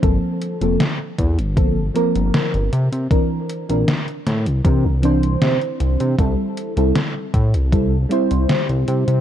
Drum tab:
HH |x-xxx-xxx-xxxxxx|x-xxxxxxx-xxxxxx|x-xxx-xxx-xxxxxx|
SD |----o-------o---|----o-o-----o---|----o-------o---|
BD |o-----o-o-------|o-------o-------|o-----o-o-------|